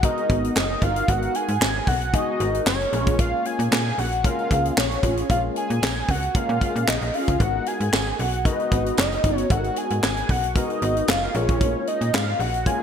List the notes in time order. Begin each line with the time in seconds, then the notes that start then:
0.03 G#3 B3 D#4 F#4 A#4 D#5, kick, closed hi-hat
0.17 closed hi-hat
0.29 G#1 B3 D#4 F#4, kick, closed hi-hat
0.43 B3 D#4 F#4, closed hi-hat
0.56 F#1 D#5, snare, clap, tambourine
0.81 G1 D#4 F#4 A#4 F5, kick, closed hi-hat
0.96 closed hi-hat
1.08 G#1 G#3 B3 D#4 F#4 A#4 F#5, kick, closed hi-hat
1.22 closed hi-hat
1.34 G#5, closed hi-hat
1.48 G#2, closed hi-hat
1.61 G#1, snare, clap, tambourine
1.87 B1 F#5, kick, open hi-hat
2.01 closed hi-hat
2.13 G#3 B3 D#4 F#4 G#4 D#5, kick, closed hi-hat
2.39 G#1 D#4 F#4 A#4, closed hi-hat
2.53 D#4 F#4 A#4, closed hi-hat
2.66 F#1 C#5, snare, clap, tambourine
2.81 closed hi-hat
2.92 A#1 G#3 A#3 C#4 F4 G#4 A#4, closed hi-hat
3.07 kick, closed hi-hat
3.19 F5, kick, closed hi-hat
3.45 G#5, closed hi-hat
3.59 A#2, closed hi-hat
3.72 A#2 G#5, snare, clap, tambourine
3.98 A#1 F#5, open hi-hat
4.12 closed hi-hat
4.24 G#3 A#3 C#4 F4 A#4 F5, kick, closed hi-hat
4.39 closed hi-hat
4.50 C#2 C#4 F4 G#4, kick, closed hi-hat
4.63 C#4 F4 G#4, closed hi-hat
4.77 A#1 C#5, snare, clap, tambourine
4.91 closed hi-hat
5.02 A1 C#4 F4 G#4, kick, closed hi-hat
5.17 closed hi-hat
5.29 A#1 G#3 A#3 B3 F4 A#4 F5, kick, closed hi-hat
5.36 C#4
5.56 G#5, closed hi-hat
5.70 A#2, closed hi-hat
5.83 A#1, snare, clap, tambourine
6.09 C#2 F#5, kick, open hi-hat
6.23 closed hi-hat
6.34 G#3 A#3 C#4 F4 A#4 F5, kick, closed hi-hat
6.49 A#2, closed hi-hat
6.61 C#4 F4 G#4, kick, closed hi-hat
6.75 A#2 C#4 F4 G#4, closed hi-hat
6.87 A#1 D#5, snare, clap, tambourine
7.01 A#1, closed hi-hat
7.14 C#4 F4 G#4 F5, open hi-hat
7.28 C#2, kick, closed hi-hat
7.40 G#1 G#3 B3 D#4 F#4 A#4 F#5, kick, closed hi-hat
7.66 G#5, closed hi-hat
7.80 G#2, closed hi-hat
7.93 G#1, snare, clap, tambourine
8.19 B1 F#5, open hi-hat
8.33 closed hi-hat
8.45 G#3 B3 D#4 F#4 A#4 D#5, kick, closed hi-hat
8.52 B4
8.60 closed hi-hat
8.71 G#1 B3 D#4 F#4, kick, closed hi-hat
8.86 B3 D#4 F#4, closed hi-hat
8.97 F#1 D#5, snare, clap, tambourine
9.12 closed hi-hat
9.24 G1 B3 D#4 F#4, kick, closed hi-hat
9.37 C#5, closed hi-hat
9.50 G#1 G#3 B3 D#4 F#4 A4 F#5, kick, closed hi-hat
9.57 A#4
9.64 closed hi-hat
9.76 G#5, closed hi-hat
9.90 G#2, closed hi-hat
10.03 G#1 G#5, snare, clap, tambourine
10.17 closed hi-hat
10.29 B1 F#5, kick, open hi-hat
10.43 closed hi-hat
10.55 G#3 B3 D#4 F#4 A#4 D#5, kick, closed hi-hat
10.70 closed hi-hat
10.82 G#1 B3 D#4 F#4, closed hi-hat
10.96 B3 D#4 F#4, closed hi-hat
11.08 F#1 F5, snare, clap, tambourine
11.34 A#1 G#3 A#3 C#4 F4 G#4 A#4 C#5, closed hi-hat
11.49 kick, closed hi-hat
11.61 kick, closed hi-hat
11.87 D#5, closed hi-hat
12.01 A#2, closed hi-hat
12.14 G#2 F5, snare, clap, tambourine
12.40 A#1 F#5, open hi-hat
12.54 closed hi-hat
12.66 G#3 A#3 C#4 F4 A#4 G#5, kick, closed hi-hat